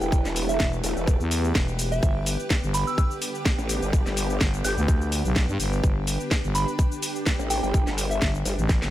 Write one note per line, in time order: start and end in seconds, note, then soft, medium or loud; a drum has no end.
0.00 0.23 E1 loud
0.00 1.99 E3 medium
0.00 1.99 A3 medium
0.00 2.66 E4 medium
0.00 1.99 G4 medium
0.00 8.90 G4 medium
0.00 8.90 B4 medium
0.00 8.90 G5 medium
0.00 0.08 G5 medium
0.00 cabasa soft
0.12 kick loud
0.12 cabasa soft
0.25 0.58 E1 loud
0.25 snare soft
0.25 cabasa soft
0.36 open hi-hat loud
0.36 cabasa medium
0.49 0.60 E5 medium
0.49 cabasa soft
0.60 0.82 E1 loud
0.60 kick loud
0.60 snare loud
0.60 cabasa soft
0.73 cabasa soft
0.84 0.95 E1 loud
0.84 open hi-hat loud
0.84 cabasa medium
0.97 1.18 E1 loud
0.97 cabasa soft
1.07 kick loud
1.07 cabasa soft
1.20 1.53 E2 loud
1.20 cabasa soft
1.31 open hi-hat loud
1.31 cabasa medium
1.44 cabasa soft
1.55 2.01 E1 loud
1.55 kick loud
1.55 snare loud
1.55 cabasa soft
1.68 cabasa soft
1.79 open hi-hat loud
1.79 cabasa medium
1.92 2.08 E5 medium
1.92 cabasa soft
2.03 2.37 G1 medium
2.03 8.90 D3 medium
2.03 8.90 B3 medium
2.03 8.90 D4 medium
2.03 5.80 G4 medium
2.03 kick loud
2.03 cabasa soft
2.26 open hi-hat loud
2.26 cabasa medium
2.40 cabasa soft
2.50 kick loud
2.50 snare loud
2.50 cabasa soft
2.63 2.85 G1 loud
2.63 cabasa soft
2.74 2.85 B5 medium
2.74 open hi-hat medium
2.74 cabasa medium
2.87 2.94 E6 medium
2.87 cabasa soft
2.98 3.06 E6 medium
2.98 kick loud
2.98 cabasa soft
3.11 cabasa soft
3.22 open hi-hat loud
3.22 cabasa medium
3.35 cabasa soft
3.46 kick loud
3.46 snare loud
3.46 cabasa soft
3.58 3.80 A1 medium
3.58 cabasa soft
3.69 open hi-hat medium
3.69 cabasa medium
3.82 4.04 G1 loud
3.82 cabasa soft
3.93 kick loud
3.93 cabasa soft
4.06 4.39 G1 loud
4.06 snare soft
4.06 cabasa soft
4.17 open hi-hat loud
4.17 cabasa medium
4.30 cabasa soft
4.41 4.63 G1 loud
4.41 kick loud
4.41 snare loud
4.41 cabasa soft
4.54 cabasa soft
4.64 4.75 G1 loud
4.64 5.01 G6 loud
4.64 open hi-hat medium
4.64 cabasa medium
4.77 5.23 D2 loud
4.77 cabasa soft
4.88 kick loud
4.88 cabasa soft
5.01 cabasa soft
5.12 open hi-hat loud
5.12 cabasa medium
5.25 5.47 B1 loud
5.25 cabasa soft
5.36 kick loud
5.36 snare loud
5.36 cabasa soft
5.49 5.58 G2 medium
5.49 cabasa soft
5.60 5.82 G1 medium
5.60 open hi-hat medium
5.60 cabasa medium
5.73 cabasa soft
5.83 8.90 G4 medium
5.83 kick loud
5.83 cabasa soft
6.07 open hi-hat loud
6.07 cabasa medium
6.20 cabasa soft
6.31 kick loud
6.31 snare loud
6.31 cabasa soft
6.44 6.66 G1 loud
6.44 cabasa soft
6.55 6.65 B5 medium
6.55 open hi-hat medium
6.55 cabasa medium
6.68 cabasa soft
6.79 kick loud
6.79 cabasa soft
6.92 cabasa soft
7.02 open hi-hat loud
7.02 cabasa medium
7.16 cabasa soft
7.26 kick loud
7.26 snare loud
7.26 cabasa soft
7.39 7.61 A1 loud
7.39 cabasa soft
7.50 7.59 G5 medium
7.50 open hi-hat medium
7.50 cabasa medium
7.63 7.85 G1 loud
7.63 7.70 G5 medium
7.63 cabasa soft
7.74 kick loud
7.74 cabasa soft
7.87 8.20 G1 loud
7.87 snare soft
7.87 cabasa soft
7.98 open hi-hat loud
7.98 cabasa medium
8.11 8.21 E5 medium
8.11 cabasa soft
8.22 8.44 G1 loud
8.22 kick loud
8.22 snare loud
8.22 cabasa soft
8.35 cabasa soft
8.45 8.56 G1 loud
8.45 open hi-hat medium
8.45 cabasa medium
8.58 8.80 A1 loud
8.58 cabasa soft
8.69 kick loud
8.69 snare medium
8.69 cabasa soft
8.82 8.90 G1 loud
8.82 snare medium
8.82 cabasa soft